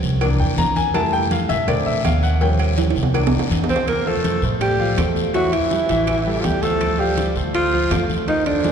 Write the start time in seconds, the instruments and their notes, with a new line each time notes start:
Already playing: grand piano F3 G3 C#4
0.02 upright bass C2, short guiro
0.21 grand piano E3 A#3 D4, cowbell, high conga, low agogo, long guiro, claves
0.39 upright bass E2, grand piano G5, high conga
0.58 upright bass F2, grand piano A#5, cowbell, high conga, low timbale, low agogo, short guiro
0.76 grand piano G#5, cowbell, high conga, short guiro
0.94 grand piano G3 A3 E4 A5, cowbell, high conga, low agogo, long guiro, claves
1.13 grand piano G5, high conga
1.31 grand piano F5, cowbell, high conga, low agogo, short guiro
1.49 upright bass A#1, grand piano E5, cowbell, high conga, low agogo, short guiro
1.67 grand piano D3 A3 C4 D5, cowbell, high conga, low conga, low agogo, long guiro, claves
1.86 grand piano E5, high conga
2.04 upright bass D#2, grand piano F5, cowbell, high conga, low timbale, low agogo, short guiro, claves
2.23 grand piano F#5, high conga, short guiro
2.41 grand piano F3 G3 C#4 G5, cowbell, high conga, low agogo, long guiro
2.59 cowbell, high conga, low agogo, claves
2.78 cowbell, high conga, high timbale, short guiro
2.90 high timbale
2.95 upright bass C2, short guiro
3.03 low timbale
3.14 grand piano E3 A#3 D4, cowbell, high conga, low agogo, long guiro, claves
3.27 low timbale
3.32 upright bass E2, high conga
3.39 low timbale
3.50 upright bass F2, cowbell, high conga, low agogo, short guiro
3.64 low timbale
3.69 tenor saxophone C4, alto saxophone C5, cowbell, high conga, short guiro
3.76 low timbale
3.87 tenor saxophone A#3, alto saxophone A#4, high bongo, high conga, high timbale, long guiro, claves
4.05 grand piano F3 F4 F5, tenor saxophone A3, alto saxophone A4, high conga
4.24 high bongo, high conga, high timbale, low timbale, short guiro
4.42 upright bass A2, grand piano A3 A4 C5, high conga, short guiro
4.61 tenor saxophone G3, alto saxophone G4, high bongo, high conga, high timbale, long guiro, claves
4.79 grand piano F3 F4 F5, high conga
4.97 upright bass E2, grand piano A3 A4 C5, high bongo, low bongo, high conga, high timbale, low timbale, short guiro, claves
5.16 high conga, short guiro
5.34 grand piano E3 E4 E5, tenor saxophone F#3, alto saxophone F#4, high bongo, high conga, high timbale, long guiro
5.52 tenor saxophone E3, alto saxophone E4, high bongo, high conga, high timbale, claves
5.71 grand piano G3 G4 B4, high bongo, high conga, low timbale, short guiro
5.89 upright bass A1, grand piano E3 E4 E5, high bongo, high conga, high timbale, short guiro
6.07 high bongo, high timbale, long guiro, claves
6.26 grand piano G3 G4 A4, high bongo, high conga
6.40 upright bass D2, tenor saxophone F3 G3, alto saxophone F4, high bongo, low bongo, high conga, high timbale, low timbale
6.44 alto saxophone G4, short guiro
6.62 grand piano F3 F4 F5, tenor saxophone A3, alto saxophone A4, high conga, high timbale, short guiro
6.80 high bongo, high conga, high timbale, long guiro, claves
6.99 grand piano F3 F4 F5, tenor saxophone G3, alto saxophone G4, high conga
7.17 high bongo, high conga, high timbale, low timbale, short guiro
7.36 upright bass D2, grand piano A3 A4 C5, high conga, short guiro
7.54 tenor saxophone F3, alto saxophone F4, high bongo, high conga, high timbale, long guiro, claves
7.73 grand piano F3 F4 F5, high conga
7.90 upright bass F2, grand piano A3 A4 C5, high bongo, low bongo, high conga, high timbale, low timbale, short guiro, claves
8.09 high conga, short guiro
8.27 tenor saxophone D#3, grand piano F3 F4 F5, alto saxophone D#4, high bongo, high conga, high timbale, long guiro
8.46 tenor saxophone D3, alto saxophone D4, high bongo, high conga, high timbale, claves
8.64 grand piano G#3 G#4 C5, high bongo, high conga, low timbale, short guiro